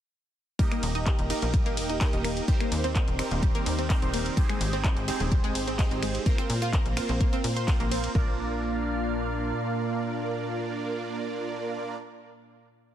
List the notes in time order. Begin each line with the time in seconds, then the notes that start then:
0.59 G3 A#3 D#4 G4 A#4 D#5, kick, closed hi-hat
0.72 A#3, finger snap, closed hi-hat
0.83 D#1, open hi-hat, ride
0.95 D#4, closed hi-hat
1.06 G4, kick, clap, closed hi-hat
1.19 D#1, closed hi-hat
1.30 A#3 D#4 G4 A#4 D#5, open hi-hat, ride
1.42 A#1 A#3, closed hi-hat
1.54 G3, kick, closed hi-hat
1.66 A#3, closed hi-hat
1.77 D#1, open hi-hat, ride
1.89 D#4, closed hi-hat
2.01 A#3 D#4 G4 A#4 D#5, kick, clap, closed hi-hat
2.13 D#1 D#4, closed hi-hat
2.24 A#3, finger snap, open hi-hat, ride
2.37 closed hi-hat
2.48 D#3 G3 C4 D#4 G4 A#4 C5 D5, kick, closed hi-hat
2.60 A#3, finger snap, closed hi-hat
2.72 D#2, open hi-hat, ride
2.84 C4, closed hi-hat
2.95 D#4, kick, clap, closed hi-hat
3.08 D#1, closed hi-hat
3.19 C4 D#4 G4 A#4 C5, finger snap, open hi-hat, ride
3.31 D#1 A#3, closed hi-hat
3.43 G3, kick, closed hi-hat
3.55 A#3, closed hi-hat
3.66 D#2, open hi-hat, ride
3.79 C4, closed hi-hat
3.90 C4 D#4 G4 A#4 C5, kick, clap, closed hi-hat
4.02 D#1 C4, closed hi-hat
4.14 A#3, open hi-hat, ride
4.26 closed hi-hat
4.37 G3 G#3 C4 D#4 G4 G#4 C5 G5, kick, closed hi-hat
4.49 G#3, finger snap, closed hi-hat
4.61 G#1, open hi-hat, ride
4.73 C4, closed hi-hat
4.84 D#4, kick, clap, closed hi-hat
4.97 G#1, closed hi-hat
5.08 C4 D#4 G4 G#4 C5, open hi-hat, ride
5.20 D#1 G#3, closed hi-hat
5.32 G3, kick, closed hi-hat
5.44 G#3, closed hi-hat
5.55 G#1, open hi-hat, ride
5.67 C4, closed hi-hat
5.79 C4 D#4 G4 G#4 C5, kick, clap, closed hi-hat
5.91 G#1 C4, closed hi-hat
6.03 G#3, finger snap, open hi-hat, ride
6.15 closed hi-hat
6.26 A#3 C4 F4 A#4 C5, kick, closed hi-hat
6.38 C4, finger snap, closed hi-hat
6.50 A#2, open hi-hat, ride
6.62 F4, closed hi-hat
6.73 A#4, kick, clap, closed hi-hat
6.86 A#1, closed hi-hat
6.97 A#3 C4 F4 A#4 C5, finger snap, open hi-hat, ride
7.09 A#1 C4, closed hi-hat
7.21 A#3, kick, closed hi-hat
7.33 C4, closed hi-hat
7.44 A#2, open hi-hat, ride
7.56 C5, closed hi-hat
7.68 A#3 C4 F4 A#4 C5, kick, clap, closed hi-hat
7.80 A#1 A#3, closed hi-hat
7.91 C4, open hi-hat, ride
8.04 closed hi-hat
8.15 A#1 A#2 A#3 D4 F4 A#4 D5 F5, kick